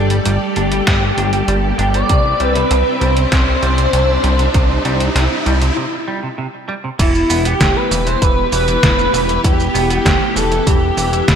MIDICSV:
0, 0, Header, 1, 8, 480
1, 0, Start_track
1, 0, Key_signature, 1, "minor"
1, 0, Tempo, 612245
1, 1643, Time_signature, 4, 2, 24, 8
1, 8902, End_track
2, 0, Start_track
2, 0, Title_t, "Analog synth lead"
2, 0, Program_c, 0, 81
2, 0, Note_on_c, 0, 67, 110
2, 1374, Note_off_c, 0, 67, 0
2, 1405, Note_on_c, 0, 67, 92
2, 1516, Note_off_c, 0, 67, 0
2, 1526, Note_on_c, 0, 74, 110
2, 1884, Note_on_c, 0, 71, 106
2, 1896, Note_off_c, 0, 74, 0
2, 2362, Note_on_c, 0, 72, 108
2, 2374, Note_off_c, 0, 71, 0
2, 4523, Note_off_c, 0, 72, 0
2, 5484, Note_on_c, 0, 64, 94
2, 5595, Note_off_c, 0, 64, 0
2, 5604, Note_on_c, 0, 64, 95
2, 5827, Note_off_c, 0, 64, 0
2, 5845, Note_on_c, 0, 67, 106
2, 6084, Note_on_c, 0, 71, 108
2, 6096, Note_off_c, 0, 67, 0
2, 6321, Note_off_c, 0, 71, 0
2, 6326, Note_on_c, 0, 72, 107
2, 6447, Note_on_c, 0, 71, 112
2, 6459, Note_off_c, 0, 72, 0
2, 6682, Note_off_c, 0, 71, 0
2, 6686, Note_on_c, 0, 71, 116
2, 7373, Note_off_c, 0, 71, 0
2, 7408, Note_on_c, 0, 67, 104
2, 7741, Note_off_c, 0, 67, 0
2, 7769, Note_on_c, 0, 67, 111
2, 8129, Note_on_c, 0, 69, 100
2, 8141, Note_off_c, 0, 67, 0
2, 8361, Note_off_c, 0, 69, 0
2, 8366, Note_on_c, 0, 67, 93
2, 8902, Note_off_c, 0, 67, 0
2, 8902, End_track
3, 0, Start_track
3, 0, Title_t, "Digital synth lead"
3, 0, Program_c, 1, 84
3, 0, Note_on_c, 1, 67, 109
3, 1373, Note_off_c, 1, 67, 0
3, 1408, Note_on_c, 1, 67, 90
3, 1517, Note_off_c, 1, 67, 0
3, 1525, Note_on_c, 1, 74, 113
3, 1881, Note_on_c, 1, 71, 101
3, 1892, Note_off_c, 1, 74, 0
3, 2365, Note_on_c, 1, 72, 107
3, 2376, Note_off_c, 1, 71, 0
3, 4524, Note_off_c, 1, 72, 0
3, 5484, Note_on_c, 1, 64, 97
3, 5595, Note_off_c, 1, 64, 0
3, 5606, Note_on_c, 1, 64, 97
3, 5828, Note_off_c, 1, 64, 0
3, 5844, Note_on_c, 1, 67, 101
3, 6086, Note_on_c, 1, 71, 107
3, 6098, Note_off_c, 1, 67, 0
3, 6318, Note_off_c, 1, 71, 0
3, 6323, Note_on_c, 1, 72, 110
3, 6446, Note_on_c, 1, 71, 109
3, 6458, Note_off_c, 1, 72, 0
3, 6682, Note_off_c, 1, 71, 0
3, 6686, Note_on_c, 1, 71, 121
3, 7373, Note_off_c, 1, 71, 0
3, 7409, Note_on_c, 1, 67, 102
3, 7741, Note_off_c, 1, 67, 0
3, 7771, Note_on_c, 1, 67, 103
3, 8131, Note_on_c, 1, 69, 100
3, 8143, Note_off_c, 1, 67, 0
3, 8363, Note_off_c, 1, 69, 0
3, 8367, Note_on_c, 1, 67, 92
3, 8902, Note_off_c, 1, 67, 0
3, 8902, End_track
4, 0, Start_track
4, 0, Title_t, "String machine"
4, 0, Program_c, 2, 50
4, 0, Note_on_c, 2, 55, 80
4, 0, Note_on_c, 2, 67, 70
4, 0, Note_on_c, 2, 69, 74
4, 0, Note_on_c, 2, 74, 88
4, 1610, Note_off_c, 2, 55, 0
4, 1611, Note_off_c, 2, 74, 0
4, 1612, Note_off_c, 2, 69, 0
4, 1641, Note_on_c, 2, 60, 81
4, 1642, Note_on_c, 2, 74, 74
4, 1642, Note_on_c, 2, 76, 89
4, 4490, Note_off_c, 2, 67, 0
4, 4493, Note_off_c, 2, 60, 0
4, 4494, Note_off_c, 2, 74, 0
4, 4494, Note_off_c, 2, 76, 0
4, 5483, Note_on_c, 2, 64, 76
4, 5484, Note_on_c, 2, 59, 81
4, 5484, Note_on_c, 2, 67, 91
4, 8902, Note_off_c, 2, 59, 0
4, 8902, Note_off_c, 2, 64, 0
4, 8902, Note_off_c, 2, 67, 0
4, 8902, End_track
5, 0, Start_track
5, 0, Title_t, "Clean electric guitar"
5, 0, Program_c, 3, 27
5, 86, Note_on_c, 3, 55, 73
5, 121, Note_off_c, 3, 55, 0
5, 204, Note_on_c, 3, 55, 81
5, 263, Note_off_c, 3, 55, 0
5, 444, Note_on_c, 3, 62, 76
5, 503, Note_off_c, 3, 62, 0
5, 564, Note_on_c, 3, 55, 76
5, 600, Note_off_c, 3, 55, 0
5, 684, Note_on_c, 3, 55, 82
5, 743, Note_off_c, 3, 55, 0
5, 923, Note_on_c, 3, 62, 74
5, 1013, Note_off_c, 3, 62, 0
5, 1044, Note_on_c, 3, 55, 77
5, 1080, Note_off_c, 3, 55, 0
5, 1163, Note_on_c, 3, 55, 82
5, 1223, Note_off_c, 3, 55, 0
5, 1404, Note_on_c, 3, 62, 100
5, 1440, Note_off_c, 3, 62, 0
5, 1524, Note_on_c, 3, 55, 76
5, 1560, Note_off_c, 3, 55, 0
5, 1644, Note_on_c, 3, 48, 78
5, 1703, Note_off_c, 3, 48, 0
5, 1885, Note_on_c, 3, 55, 72
5, 1974, Note_off_c, 3, 55, 0
5, 2004, Note_on_c, 3, 48, 78
5, 2040, Note_off_c, 3, 48, 0
5, 2123, Note_on_c, 3, 48, 81
5, 2183, Note_off_c, 3, 48, 0
5, 2364, Note_on_c, 3, 55, 76
5, 2423, Note_off_c, 3, 55, 0
5, 2483, Note_on_c, 3, 48, 75
5, 2519, Note_off_c, 3, 48, 0
5, 2604, Note_on_c, 3, 48, 84
5, 2664, Note_off_c, 3, 48, 0
5, 2844, Note_on_c, 3, 55, 77
5, 2933, Note_off_c, 3, 55, 0
5, 2963, Note_on_c, 3, 48, 80
5, 2999, Note_off_c, 3, 48, 0
5, 3082, Note_on_c, 3, 48, 82
5, 3143, Note_off_c, 3, 48, 0
5, 3321, Note_on_c, 3, 55, 97
5, 3358, Note_off_c, 3, 55, 0
5, 3441, Note_on_c, 3, 48, 78
5, 3478, Note_off_c, 3, 48, 0
5, 3561, Note_on_c, 3, 48, 82
5, 3622, Note_off_c, 3, 48, 0
5, 3802, Note_on_c, 3, 55, 74
5, 3892, Note_off_c, 3, 55, 0
5, 3922, Note_on_c, 3, 48, 75
5, 3959, Note_off_c, 3, 48, 0
5, 4041, Note_on_c, 3, 48, 80
5, 4102, Note_off_c, 3, 48, 0
5, 4282, Note_on_c, 3, 55, 75
5, 4342, Note_off_c, 3, 55, 0
5, 4403, Note_on_c, 3, 48, 76
5, 4439, Note_off_c, 3, 48, 0
5, 4523, Note_on_c, 3, 48, 83
5, 4583, Note_off_c, 3, 48, 0
5, 4764, Note_on_c, 3, 55, 75
5, 4853, Note_off_c, 3, 55, 0
5, 4883, Note_on_c, 3, 48, 77
5, 4919, Note_off_c, 3, 48, 0
5, 5002, Note_on_c, 3, 48, 85
5, 5063, Note_off_c, 3, 48, 0
5, 5242, Note_on_c, 3, 55, 100
5, 5279, Note_off_c, 3, 55, 0
5, 5363, Note_on_c, 3, 48, 79
5, 5399, Note_off_c, 3, 48, 0
5, 5482, Note_on_c, 3, 52, 82
5, 5572, Note_off_c, 3, 52, 0
5, 5722, Note_on_c, 3, 59, 98
5, 5813, Note_off_c, 3, 59, 0
5, 5843, Note_on_c, 3, 59, 102
5, 5903, Note_off_c, 3, 59, 0
5, 5964, Note_on_c, 3, 59, 99
5, 6000, Note_off_c, 3, 59, 0
5, 6204, Note_on_c, 3, 52, 76
5, 6264, Note_off_c, 3, 52, 0
5, 6324, Note_on_c, 3, 52, 77
5, 6414, Note_off_c, 3, 52, 0
5, 6443, Note_on_c, 3, 52, 82
5, 6533, Note_off_c, 3, 52, 0
5, 6684, Note_on_c, 3, 52, 76
5, 6773, Note_off_c, 3, 52, 0
5, 6805, Note_on_c, 3, 52, 102
5, 6894, Note_off_c, 3, 52, 0
5, 6922, Note_on_c, 3, 64, 87
5, 6983, Note_off_c, 3, 64, 0
5, 7163, Note_on_c, 3, 52, 78
5, 7223, Note_off_c, 3, 52, 0
5, 7282, Note_on_c, 3, 52, 79
5, 7373, Note_off_c, 3, 52, 0
5, 7402, Note_on_c, 3, 52, 80
5, 7492, Note_off_c, 3, 52, 0
5, 7640, Note_on_c, 3, 59, 99
5, 7732, Note_off_c, 3, 59, 0
5, 7761, Note_on_c, 3, 59, 105
5, 7822, Note_off_c, 3, 59, 0
5, 7881, Note_on_c, 3, 59, 104
5, 7918, Note_off_c, 3, 59, 0
5, 8122, Note_on_c, 3, 52, 79
5, 8182, Note_off_c, 3, 52, 0
5, 8244, Note_on_c, 3, 52, 77
5, 8333, Note_off_c, 3, 52, 0
5, 8363, Note_on_c, 3, 52, 86
5, 8453, Note_off_c, 3, 52, 0
5, 8603, Note_on_c, 3, 52, 76
5, 8693, Note_off_c, 3, 52, 0
5, 8723, Note_on_c, 3, 52, 103
5, 8813, Note_off_c, 3, 52, 0
5, 8842, Note_on_c, 3, 64, 86
5, 8902, Note_off_c, 3, 64, 0
5, 8902, End_track
6, 0, Start_track
6, 0, Title_t, "Analog synth bass"
6, 0, Program_c, 4, 38
6, 0, Note_on_c, 4, 31, 87
6, 155, Note_off_c, 4, 31, 0
6, 201, Note_on_c, 4, 31, 98
6, 299, Note_off_c, 4, 31, 0
6, 441, Note_on_c, 4, 31, 84
6, 635, Note_off_c, 4, 31, 0
6, 683, Note_on_c, 4, 31, 101
6, 876, Note_off_c, 4, 31, 0
6, 920, Note_on_c, 4, 31, 94
6, 1114, Note_off_c, 4, 31, 0
6, 1160, Note_on_c, 4, 31, 95
6, 1354, Note_off_c, 4, 31, 0
6, 1401, Note_on_c, 4, 31, 93
6, 1595, Note_off_c, 4, 31, 0
6, 1642, Note_on_c, 4, 36, 98
6, 1835, Note_off_c, 4, 36, 0
6, 1882, Note_on_c, 4, 36, 89
6, 2075, Note_off_c, 4, 36, 0
6, 2124, Note_on_c, 4, 36, 98
6, 2220, Note_off_c, 4, 36, 0
6, 2362, Note_on_c, 4, 36, 82
6, 2555, Note_off_c, 4, 36, 0
6, 2602, Note_on_c, 4, 36, 104
6, 2795, Note_off_c, 4, 36, 0
6, 2842, Note_on_c, 4, 36, 91
6, 3035, Note_off_c, 4, 36, 0
6, 3083, Note_on_c, 4, 36, 97
6, 3276, Note_off_c, 4, 36, 0
6, 3321, Note_on_c, 4, 36, 91
6, 3515, Note_off_c, 4, 36, 0
6, 3562, Note_on_c, 4, 36, 98
6, 3755, Note_off_c, 4, 36, 0
6, 3801, Note_on_c, 4, 36, 87
6, 3995, Note_off_c, 4, 36, 0
6, 4041, Note_on_c, 4, 36, 99
6, 4138, Note_off_c, 4, 36, 0
6, 4282, Note_on_c, 4, 36, 81
6, 4475, Note_off_c, 4, 36, 0
6, 5482, Note_on_c, 4, 28, 97
6, 5675, Note_off_c, 4, 28, 0
6, 5721, Note_on_c, 4, 28, 86
6, 5915, Note_off_c, 4, 28, 0
6, 5963, Note_on_c, 4, 28, 96
6, 6060, Note_off_c, 4, 28, 0
6, 6202, Note_on_c, 4, 28, 85
6, 6395, Note_off_c, 4, 28, 0
6, 6443, Note_on_c, 4, 28, 103
6, 6636, Note_off_c, 4, 28, 0
6, 6683, Note_on_c, 4, 28, 90
6, 6876, Note_off_c, 4, 28, 0
6, 6923, Note_on_c, 4, 28, 99
6, 7116, Note_off_c, 4, 28, 0
6, 7163, Note_on_c, 4, 28, 96
6, 7356, Note_off_c, 4, 28, 0
6, 7403, Note_on_c, 4, 28, 98
6, 7596, Note_off_c, 4, 28, 0
6, 7643, Note_on_c, 4, 28, 91
6, 7836, Note_off_c, 4, 28, 0
6, 7883, Note_on_c, 4, 28, 100
6, 7979, Note_off_c, 4, 28, 0
6, 8121, Note_on_c, 4, 28, 82
6, 8315, Note_off_c, 4, 28, 0
6, 8363, Note_on_c, 4, 28, 105
6, 8556, Note_off_c, 4, 28, 0
6, 8603, Note_on_c, 4, 28, 95
6, 8796, Note_off_c, 4, 28, 0
6, 8844, Note_on_c, 4, 28, 97
6, 8902, Note_off_c, 4, 28, 0
6, 8902, End_track
7, 0, Start_track
7, 0, Title_t, "Riser"
7, 0, Program_c, 5, 103
7, 0, Note_on_c, 5, 60, 76
7, 4522, Note_off_c, 5, 60, 0
7, 8902, End_track
8, 0, Start_track
8, 0, Title_t, "Drums"
8, 80, Note_on_c, 9, 42, 68
8, 158, Note_off_c, 9, 42, 0
8, 200, Note_on_c, 9, 42, 97
8, 278, Note_off_c, 9, 42, 0
8, 440, Note_on_c, 9, 42, 67
8, 518, Note_off_c, 9, 42, 0
8, 561, Note_on_c, 9, 42, 68
8, 640, Note_off_c, 9, 42, 0
8, 682, Note_on_c, 9, 38, 118
8, 682, Note_on_c, 9, 42, 93
8, 683, Note_on_c, 9, 36, 125
8, 760, Note_off_c, 9, 38, 0
8, 760, Note_off_c, 9, 42, 0
8, 762, Note_off_c, 9, 36, 0
8, 922, Note_on_c, 9, 42, 69
8, 1001, Note_off_c, 9, 42, 0
8, 1041, Note_on_c, 9, 42, 71
8, 1120, Note_off_c, 9, 42, 0
8, 1161, Note_on_c, 9, 42, 94
8, 1240, Note_off_c, 9, 42, 0
8, 1402, Note_on_c, 9, 42, 66
8, 1481, Note_off_c, 9, 42, 0
8, 1523, Note_on_c, 9, 42, 68
8, 1601, Note_off_c, 9, 42, 0
8, 1642, Note_on_c, 9, 42, 89
8, 1643, Note_on_c, 9, 36, 123
8, 1720, Note_off_c, 9, 42, 0
8, 1722, Note_off_c, 9, 36, 0
8, 1882, Note_on_c, 9, 42, 66
8, 1960, Note_off_c, 9, 42, 0
8, 2003, Note_on_c, 9, 42, 69
8, 2081, Note_off_c, 9, 42, 0
8, 2123, Note_on_c, 9, 42, 96
8, 2201, Note_off_c, 9, 42, 0
8, 2363, Note_on_c, 9, 42, 67
8, 2441, Note_off_c, 9, 42, 0
8, 2482, Note_on_c, 9, 42, 67
8, 2561, Note_off_c, 9, 42, 0
8, 2602, Note_on_c, 9, 38, 121
8, 2602, Note_on_c, 9, 42, 94
8, 2603, Note_on_c, 9, 36, 127
8, 2681, Note_off_c, 9, 38, 0
8, 2681, Note_off_c, 9, 42, 0
8, 2682, Note_off_c, 9, 36, 0
8, 2843, Note_on_c, 9, 42, 66
8, 2921, Note_off_c, 9, 42, 0
8, 2964, Note_on_c, 9, 42, 69
8, 3042, Note_off_c, 9, 42, 0
8, 3083, Note_on_c, 9, 42, 93
8, 3162, Note_off_c, 9, 42, 0
8, 3323, Note_on_c, 9, 42, 65
8, 3401, Note_off_c, 9, 42, 0
8, 3443, Note_on_c, 9, 42, 69
8, 3522, Note_off_c, 9, 42, 0
8, 3562, Note_on_c, 9, 42, 88
8, 3563, Note_on_c, 9, 36, 121
8, 3641, Note_off_c, 9, 42, 0
8, 3642, Note_off_c, 9, 36, 0
8, 3803, Note_on_c, 9, 42, 66
8, 3882, Note_off_c, 9, 42, 0
8, 3923, Note_on_c, 9, 42, 66
8, 4002, Note_off_c, 9, 42, 0
8, 4043, Note_on_c, 9, 38, 64
8, 4043, Note_on_c, 9, 42, 94
8, 4121, Note_off_c, 9, 38, 0
8, 4121, Note_off_c, 9, 42, 0
8, 4283, Note_on_c, 9, 42, 65
8, 4361, Note_off_c, 9, 42, 0
8, 4402, Note_on_c, 9, 42, 63
8, 4481, Note_off_c, 9, 42, 0
8, 5483, Note_on_c, 9, 36, 118
8, 5484, Note_on_c, 9, 42, 99
8, 5484, Note_on_c, 9, 49, 103
8, 5484, Note_on_c, 9, 82, 38
8, 5561, Note_off_c, 9, 36, 0
8, 5563, Note_off_c, 9, 42, 0
8, 5563, Note_off_c, 9, 49, 0
8, 5563, Note_off_c, 9, 82, 0
8, 5605, Note_on_c, 9, 82, 28
8, 5683, Note_off_c, 9, 82, 0
8, 5724, Note_on_c, 9, 46, 83
8, 5724, Note_on_c, 9, 82, 70
8, 5802, Note_off_c, 9, 46, 0
8, 5802, Note_off_c, 9, 82, 0
8, 5844, Note_on_c, 9, 42, 72
8, 5844, Note_on_c, 9, 82, 31
8, 5922, Note_off_c, 9, 42, 0
8, 5922, Note_off_c, 9, 82, 0
8, 5963, Note_on_c, 9, 36, 117
8, 5964, Note_on_c, 9, 38, 121
8, 5964, Note_on_c, 9, 42, 97
8, 5964, Note_on_c, 9, 82, 41
8, 6041, Note_off_c, 9, 36, 0
8, 6042, Note_off_c, 9, 38, 0
8, 6042, Note_off_c, 9, 42, 0
8, 6042, Note_off_c, 9, 82, 0
8, 6205, Note_on_c, 9, 46, 80
8, 6205, Note_on_c, 9, 82, 71
8, 6283, Note_off_c, 9, 46, 0
8, 6283, Note_off_c, 9, 82, 0
8, 6325, Note_on_c, 9, 42, 67
8, 6325, Note_on_c, 9, 82, 29
8, 6403, Note_off_c, 9, 42, 0
8, 6403, Note_off_c, 9, 82, 0
8, 6443, Note_on_c, 9, 36, 119
8, 6444, Note_on_c, 9, 42, 96
8, 6444, Note_on_c, 9, 82, 40
8, 6522, Note_off_c, 9, 36, 0
8, 6523, Note_off_c, 9, 42, 0
8, 6523, Note_off_c, 9, 82, 0
8, 6683, Note_on_c, 9, 46, 80
8, 6683, Note_on_c, 9, 82, 69
8, 6761, Note_off_c, 9, 46, 0
8, 6761, Note_off_c, 9, 82, 0
8, 6804, Note_on_c, 9, 42, 69
8, 6804, Note_on_c, 9, 82, 30
8, 6883, Note_off_c, 9, 42, 0
8, 6883, Note_off_c, 9, 82, 0
8, 6924, Note_on_c, 9, 36, 121
8, 6924, Note_on_c, 9, 38, 113
8, 6924, Note_on_c, 9, 42, 97
8, 6924, Note_on_c, 9, 82, 39
8, 7002, Note_off_c, 9, 36, 0
8, 7002, Note_off_c, 9, 38, 0
8, 7002, Note_off_c, 9, 42, 0
8, 7002, Note_off_c, 9, 82, 0
8, 7046, Note_on_c, 9, 82, 28
8, 7124, Note_off_c, 9, 82, 0
8, 7166, Note_on_c, 9, 46, 81
8, 7166, Note_on_c, 9, 82, 66
8, 7244, Note_off_c, 9, 46, 0
8, 7244, Note_off_c, 9, 82, 0
8, 7285, Note_on_c, 9, 42, 68
8, 7285, Note_on_c, 9, 82, 30
8, 7363, Note_off_c, 9, 42, 0
8, 7363, Note_off_c, 9, 82, 0
8, 7404, Note_on_c, 9, 36, 120
8, 7405, Note_on_c, 9, 42, 99
8, 7405, Note_on_c, 9, 82, 38
8, 7482, Note_off_c, 9, 36, 0
8, 7483, Note_off_c, 9, 42, 0
8, 7483, Note_off_c, 9, 82, 0
8, 7526, Note_on_c, 9, 82, 27
8, 7605, Note_off_c, 9, 82, 0
8, 7645, Note_on_c, 9, 46, 78
8, 7645, Note_on_c, 9, 82, 66
8, 7724, Note_off_c, 9, 46, 0
8, 7724, Note_off_c, 9, 82, 0
8, 7765, Note_on_c, 9, 42, 72
8, 7765, Note_on_c, 9, 82, 29
8, 7844, Note_off_c, 9, 42, 0
8, 7844, Note_off_c, 9, 82, 0
8, 7884, Note_on_c, 9, 36, 124
8, 7887, Note_on_c, 9, 38, 127
8, 7887, Note_on_c, 9, 42, 99
8, 7887, Note_on_c, 9, 82, 40
8, 7962, Note_off_c, 9, 36, 0
8, 7965, Note_off_c, 9, 38, 0
8, 7965, Note_off_c, 9, 42, 0
8, 7965, Note_off_c, 9, 82, 0
8, 8126, Note_on_c, 9, 46, 80
8, 8126, Note_on_c, 9, 82, 69
8, 8204, Note_off_c, 9, 46, 0
8, 8204, Note_off_c, 9, 82, 0
8, 8245, Note_on_c, 9, 42, 68
8, 8245, Note_on_c, 9, 82, 28
8, 8324, Note_off_c, 9, 42, 0
8, 8324, Note_off_c, 9, 82, 0
8, 8364, Note_on_c, 9, 36, 127
8, 8366, Note_on_c, 9, 42, 94
8, 8366, Note_on_c, 9, 82, 38
8, 8442, Note_off_c, 9, 36, 0
8, 8444, Note_off_c, 9, 42, 0
8, 8444, Note_off_c, 9, 82, 0
8, 8605, Note_on_c, 9, 46, 78
8, 8605, Note_on_c, 9, 82, 66
8, 8683, Note_off_c, 9, 46, 0
8, 8683, Note_off_c, 9, 82, 0
8, 8727, Note_on_c, 9, 42, 71
8, 8727, Note_on_c, 9, 82, 30
8, 8805, Note_off_c, 9, 42, 0
8, 8805, Note_off_c, 9, 82, 0
8, 8844, Note_on_c, 9, 36, 127
8, 8845, Note_on_c, 9, 38, 122
8, 8845, Note_on_c, 9, 42, 96
8, 8845, Note_on_c, 9, 82, 38
8, 8902, Note_off_c, 9, 36, 0
8, 8902, Note_off_c, 9, 38, 0
8, 8902, Note_off_c, 9, 42, 0
8, 8902, Note_off_c, 9, 82, 0
8, 8902, End_track
0, 0, End_of_file